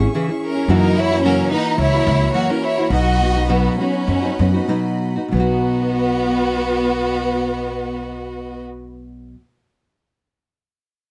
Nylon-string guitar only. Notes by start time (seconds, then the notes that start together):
0.00 C#4 E4 G#4
0.14 C#3 E3 C#4 E4 G#4
0.29 C#4 E4 G#4
0.56 C#4 E4 G#4
0.69 F#2 C#3 E3 A#3 E4 F#4
0.97 E3 A#3 E4 F#4
1.11 E3 A#3 E4 F#4
1.25 F#2 C#3 E3 A#3 E4 F#4
1.54 E3 A#3 E4 F#4
1.93 E3 A#3 E4 F#4
2.07 E3 A#3 E4 F#4
2.21 E3 A#3 E4 F#4
2.34 F#2 C#3 E3 A#3 E4 F#4
2.50 E3 A#3 E4 F#4
2.78 E3 A#3 E4 F#4
2.92 B2 F#3 B3 D#4 F#4
3.22 F#3 B3 D#4 F#4
3.35 B3 D#4 F#4
3.49 B2 F#3 B3 D#4 F#4
3.79 F#3 B3 D#4 F#4
4.22 B3 D#4 F#4
4.39 F#3 B3 D#4 F#4
4.54 B3 D#4 F#4
4.68 B2 F#3 B3 D#4 F#4
5.16 B3 D#4 F#4
5.28 B2 F#3
5.34 B3 D#4
5.40 F#4